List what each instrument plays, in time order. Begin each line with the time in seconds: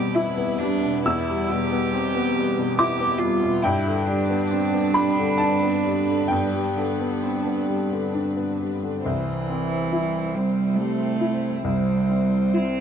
Already playing: upright piano E2 B2 G3 B3 C4 B5, string section G3 B3 B4, cello G4
0.14 cello E4, upright piano E4
0.38 upright piano B3
0.58 upright piano G3, cello D4
0.83 upright piano B2
1.04 upright piano E2 E6, cello E4
1.29 upright piano G3
1.50 upright piano B2, cello G4
1.71 upright piano B3
1.94 upright piano C4
2.15 upright piano B3
2.36 upright piano G3
2.58 upright piano B2
2.78 upright piano E4 D6, cello G4
3.00 upright piano B3
3.18 upright piano G3, cello F4
3.42 upright piano B2
3.62 upright piano G2 G5, string section G3 D4 B4, cello E4
3.86 upright piano D3
4.05 upright piano G3, cello D4
4.29 upright piano B3
4.51 upright piano C4
4.73 upright piano B3
4.94 upright piano G3 B5
5.18 upright piano D3
5.38 upright piano D4 A5
5.62 upright piano B3
5.85 upright piano G3
6.08 upright piano D3
6.28 upright piano G2 G5, cello B3
6.54 upright piano G3
6.77 upright piano D3
7.00 upright piano B3
7.23 upright piano C4
7.45 upright piano B3
7.68 upright piano G3
7.91 upright piano D3
8.14 upright piano D4
8.37 upright piano B3
8.60 upright piano G3
8.83 upright piano D3
9.02 upright piano C2, cello E3, string section G3 C4 C5
9.50 upright piano C4
9.92 upright piano E4
10.34 cello G3, upright piano C4
10.76 upright piano G3, cello A3
11.21 upright piano E4
11.64 upright piano C2, cello G3
12.09 upright piano C4
12.54 cello C4, upright piano E4